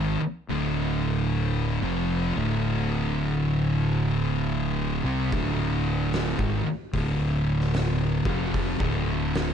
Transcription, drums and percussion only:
0, 0, Header, 1, 2, 480
1, 0, Start_track
1, 0, Key_signature, -1, "minor"
1, 0, Tempo, 805369
1, 1256, Time_signature, 4, 2, 24, 8
1, 5683, End_track
2, 0, Start_track
2, 0, Title_t, "Drums"
2, 3173, Note_on_c, 9, 36, 100
2, 3173, Note_on_c, 9, 46, 45
2, 3233, Note_off_c, 9, 36, 0
2, 3233, Note_off_c, 9, 46, 0
2, 3655, Note_on_c, 9, 46, 52
2, 3660, Note_on_c, 9, 38, 94
2, 3714, Note_off_c, 9, 46, 0
2, 3719, Note_off_c, 9, 38, 0
2, 3809, Note_on_c, 9, 36, 96
2, 3868, Note_off_c, 9, 36, 0
2, 4134, Note_on_c, 9, 36, 102
2, 4136, Note_on_c, 9, 46, 56
2, 4193, Note_off_c, 9, 36, 0
2, 4195, Note_off_c, 9, 46, 0
2, 4532, Note_on_c, 9, 38, 31
2, 4592, Note_off_c, 9, 38, 0
2, 4613, Note_on_c, 9, 46, 62
2, 4617, Note_on_c, 9, 38, 96
2, 4672, Note_off_c, 9, 46, 0
2, 4677, Note_off_c, 9, 38, 0
2, 4919, Note_on_c, 9, 36, 107
2, 4979, Note_off_c, 9, 36, 0
2, 5090, Note_on_c, 9, 46, 55
2, 5091, Note_on_c, 9, 36, 103
2, 5150, Note_off_c, 9, 46, 0
2, 5151, Note_off_c, 9, 36, 0
2, 5246, Note_on_c, 9, 36, 116
2, 5306, Note_off_c, 9, 36, 0
2, 5571, Note_on_c, 9, 46, 51
2, 5576, Note_on_c, 9, 38, 107
2, 5631, Note_off_c, 9, 46, 0
2, 5636, Note_off_c, 9, 38, 0
2, 5683, End_track
0, 0, End_of_file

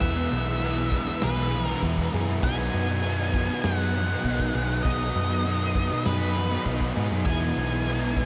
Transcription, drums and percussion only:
0, 0, Header, 1, 2, 480
1, 0, Start_track
1, 0, Key_signature, 4, "major"
1, 0, Tempo, 603622
1, 14, Time_signature, 4, 2, 24, 8
1, 6564, End_track
2, 0, Start_track
2, 0, Title_t, "Drums"
2, 9, Note_on_c, 9, 49, 80
2, 10, Note_on_c, 9, 36, 117
2, 88, Note_off_c, 9, 49, 0
2, 90, Note_off_c, 9, 36, 0
2, 252, Note_on_c, 9, 49, 59
2, 332, Note_off_c, 9, 49, 0
2, 488, Note_on_c, 9, 49, 80
2, 567, Note_off_c, 9, 49, 0
2, 728, Note_on_c, 9, 49, 61
2, 731, Note_on_c, 9, 36, 87
2, 808, Note_off_c, 9, 49, 0
2, 810, Note_off_c, 9, 36, 0
2, 851, Note_on_c, 9, 38, 32
2, 931, Note_off_c, 9, 38, 0
2, 967, Note_on_c, 9, 49, 85
2, 970, Note_on_c, 9, 38, 114
2, 1047, Note_off_c, 9, 49, 0
2, 1049, Note_off_c, 9, 38, 0
2, 1209, Note_on_c, 9, 49, 67
2, 1288, Note_off_c, 9, 49, 0
2, 1451, Note_on_c, 9, 49, 86
2, 1453, Note_on_c, 9, 36, 75
2, 1531, Note_off_c, 9, 49, 0
2, 1533, Note_off_c, 9, 36, 0
2, 1572, Note_on_c, 9, 36, 81
2, 1652, Note_off_c, 9, 36, 0
2, 1690, Note_on_c, 9, 49, 64
2, 1769, Note_off_c, 9, 49, 0
2, 1929, Note_on_c, 9, 49, 85
2, 1934, Note_on_c, 9, 36, 117
2, 2009, Note_off_c, 9, 49, 0
2, 2013, Note_off_c, 9, 36, 0
2, 2172, Note_on_c, 9, 49, 66
2, 2252, Note_off_c, 9, 49, 0
2, 2414, Note_on_c, 9, 49, 80
2, 2493, Note_off_c, 9, 49, 0
2, 2650, Note_on_c, 9, 49, 61
2, 2655, Note_on_c, 9, 36, 89
2, 2729, Note_off_c, 9, 49, 0
2, 2734, Note_off_c, 9, 36, 0
2, 2778, Note_on_c, 9, 38, 32
2, 2857, Note_off_c, 9, 38, 0
2, 2892, Note_on_c, 9, 49, 81
2, 2894, Note_on_c, 9, 38, 115
2, 2972, Note_off_c, 9, 49, 0
2, 2974, Note_off_c, 9, 38, 0
2, 3138, Note_on_c, 9, 49, 60
2, 3217, Note_off_c, 9, 49, 0
2, 3377, Note_on_c, 9, 36, 81
2, 3377, Note_on_c, 9, 49, 78
2, 3456, Note_off_c, 9, 36, 0
2, 3456, Note_off_c, 9, 49, 0
2, 3497, Note_on_c, 9, 36, 83
2, 3576, Note_off_c, 9, 36, 0
2, 3614, Note_on_c, 9, 49, 56
2, 3694, Note_off_c, 9, 49, 0
2, 3856, Note_on_c, 9, 49, 77
2, 3857, Note_on_c, 9, 36, 110
2, 3935, Note_off_c, 9, 49, 0
2, 3936, Note_off_c, 9, 36, 0
2, 4097, Note_on_c, 9, 49, 59
2, 4177, Note_off_c, 9, 49, 0
2, 4336, Note_on_c, 9, 49, 77
2, 4415, Note_off_c, 9, 49, 0
2, 4576, Note_on_c, 9, 36, 84
2, 4577, Note_on_c, 9, 49, 59
2, 4655, Note_off_c, 9, 36, 0
2, 4657, Note_off_c, 9, 49, 0
2, 4698, Note_on_c, 9, 38, 34
2, 4778, Note_off_c, 9, 38, 0
2, 4814, Note_on_c, 9, 49, 85
2, 4817, Note_on_c, 9, 38, 117
2, 4894, Note_off_c, 9, 49, 0
2, 4896, Note_off_c, 9, 38, 0
2, 5054, Note_on_c, 9, 49, 66
2, 5134, Note_off_c, 9, 49, 0
2, 5295, Note_on_c, 9, 36, 82
2, 5295, Note_on_c, 9, 49, 87
2, 5374, Note_off_c, 9, 36, 0
2, 5375, Note_off_c, 9, 49, 0
2, 5415, Note_on_c, 9, 36, 81
2, 5494, Note_off_c, 9, 36, 0
2, 5531, Note_on_c, 9, 49, 62
2, 5610, Note_off_c, 9, 49, 0
2, 5770, Note_on_c, 9, 49, 86
2, 5773, Note_on_c, 9, 36, 113
2, 5849, Note_off_c, 9, 49, 0
2, 5853, Note_off_c, 9, 36, 0
2, 6012, Note_on_c, 9, 49, 67
2, 6092, Note_off_c, 9, 49, 0
2, 6249, Note_on_c, 9, 49, 81
2, 6329, Note_off_c, 9, 49, 0
2, 6491, Note_on_c, 9, 49, 59
2, 6494, Note_on_c, 9, 36, 82
2, 6564, Note_off_c, 9, 36, 0
2, 6564, Note_off_c, 9, 49, 0
2, 6564, End_track
0, 0, End_of_file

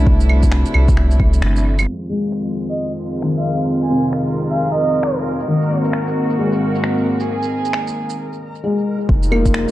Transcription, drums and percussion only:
0, 0, Header, 1, 2, 480
1, 0, Start_track
1, 0, Tempo, 451128
1, 73, Time_signature, 4, 2, 24, 8
1, 10332, End_track
2, 0, Start_track
2, 0, Title_t, "Drums"
2, 71, Note_on_c, 9, 36, 112
2, 177, Note_off_c, 9, 36, 0
2, 218, Note_on_c, 9, 82, 46
2, 313, Note_on_c, 9, 75, 37
2, 324, Note_off_c, 9, 82, 0
2, 419, Note_off_c, 9, 75, 0
2, 456, Note_on_c, 9, 82, 54
2, 460, Note_on_c, 9, 36, 59
2, 549, Note_on_c, 9, 26, 104
2, 562, Note_off_c, 9, 82, 0
2, 566, Note_off_c, 9, 36, 0
2, 655, Note_off_c, 9, 26, 0
2, 698, Note_on_c, 9, 82, 42
2, 789, Note_on_c, 9, 75, 39
2, 804, Note_off_c, 9, 82, 0
2, 896, Note_off_c, 9, 75, 0
2, 941, Note_on_c, 9, 36, 100
2, 941, Note_on_c, 9, 82, 56
2, 1033, Note_on_c, 9, 26, 57
2, 1048, Note_off_c, 9, 36, 0
2, 1048, Note_off_c, 9, 82, 0
2, 1140, Note_off_c, 9, 26, 0
2, 1181, Note_on_c, 9, 82, 31
2, 1273, Note_on_c, 9, 36, 102
2, 1288, Note_off_c, 9, 82, 0
2, 1380, Note_off_c, 9, 36, 0
2, 1419, Note_on_c, 9, 82, 53
2, 1513, Note_on_c, 9, 26, 96
2, 1526, Note_off_c, 9, 82, 0
2, 1619, Note_off_c, 9, 26, 0
2, 1662, Note_on_c, 9, 82, 32
2, 1769, Note_off_c, 9, 82, 0
2, 1903, Note_on_c, 9, 75, 54
2, 1903, Note_on_c, 9, 82, 52
2, 2009, Note_off_c, 9, 75, 0
2, 2009, Note_off_c, 9, 82, 0
2, 2383, Note_on_c, 9, 82, 51
2, 2472, Note_on_c, 9, 26, 100
2, 2490, Note_off_c, 9, 82, 0
2, 2578, Note_off_c, 9, 26, 0
2, 2619, Note_on_c, 9, 82, 37
2, 2726, Note_off_c, 9, 82, 0
2, 2858, Note_on_c, 9, 82, 49
2, 2964, Note_off_c, 9, 82, 0
2, 3100, Note_on_c, 9, 82, 29
2, 3206, Note_off_c, 9, 82, 0
2, 3339, Note_on_c, 9, 82, 48
2, 3429, Note_on_c, 9, 26, 91
2, 3446, Note_off_c, 9, 82, 0
2, 3536, Note_off_c, 9, 26, 0
2, 3819, Note_on_c, 9, 82, 48
2, 3925, Note_off_c, 9, 82, 0
2, 4059, Note_on_c, 9, 82, 39
2, 4166, Note_off_c, 9, 82, 0
2, 4300, Note_on_c, 9, 82, 52
2, 4392, Note_on_c, 9, 26, 98
2, 4406, Note_off_c, 9, 82, 0
2, 4499, Note_off_c, 9, 26, 0
2, 4543, Note_on_c, 9, 82, 40
2, 4649, Note_off_c, 9, 82, 0
2, 4782, Note_on_c, 9, 82, 50
2, 4889, Note_off_c, 9, 82, 0
2, 5021, Note_on_c, 9, 82, 29
2, 5127, Note_off_c, 9, 82, 0
2, 5264, Note_on_c, 9, 82, 50
2, 5352, Note_on_c, 9, 26, 93
2, 5370, Note_off_c, 9, 82, 0
2, 5459, Note_off_c, 9, 26, 0
2, 5741, Note_on_c, 9, 82, 50
2, 5848, Note_off_c, 9, 82, 0
2, 5982, Note_on_c, 9, 82, 39
2, 6089, Note_off_c, 9, 82, 0
2, 6220, Note_on_c, 9, 82, 53
2, 6313, Note_on_c, 9, 26, 106
2, 6327, Note_off_c, 9, 82, 0
2, 6419, Note_off_c, 9, 26, 0
2, 6464, Note_on_c, 9, 82, 39
2, 6570, Note_off_c, 9, 82, 0
2, 6702, Note_on_c, 9, 82, 52
2, 6808, Note_off_c, 9, 82, 0
2, 6940, Note_on_c, 9, 82, 30
2, 7047, Note_off_c, 9, 82, 0
2, 7183, Note_on_c, 9, 82, 49
2, 7275, Note_on_c, 9, 26, 90
2, 7290, Note_off_c, 9, 82, 0
2, 7381, Note_off_c, 9, 26, 0
2, 7661, Note_on_c, 9, 82, 49
2, 7767, Note_off_c, 9, 82, 0
2, 7901, Note_on_c, 9, 82, 40
2, 8007, Note_off_c, 9, 82, 0
2, 8140, Note_on_c, 9, 82, 51
2, 8229, Note_on_c, 9, 26, 105
2, 8247, Note_off_c, 9, 82, 0
2, 8335, Note_off_c, 9, 26, 0
2, 8378, Note_on_c, 9, 82, 38
2, 8484, Note_off_c, 9, 82, 0
2, 8615, Note_on_c, 9, 82, 52
2, 8721, Note_off_c, 9, 82, 0
2, 9672, Note_on_c, 9, 36, 124
2, 9779, Note_off_c, 9, 36, 0
2, 9820, Note_on_c, 9, 82, 47
2, 9915, Note_on_c, 9, 75, 38
2, 9926, Note_off_c, 9, 82, 0
2, 10021, Note_off_c, 9, 75, 0
2, 10061, Note_on_c, 9, 36, 64
2, 10061, Note_on_c, 9, 82, 55
2, 10152, Note_on_c, 9, 26, 113
2, 10167, Note_off_c, 9, 36, 0
2, 10167, Note_off_c, 9, 82, 0
2, 10259, Note_off_c, 9, 26, 0
2, 10332, End_track
0, 0, End_of_file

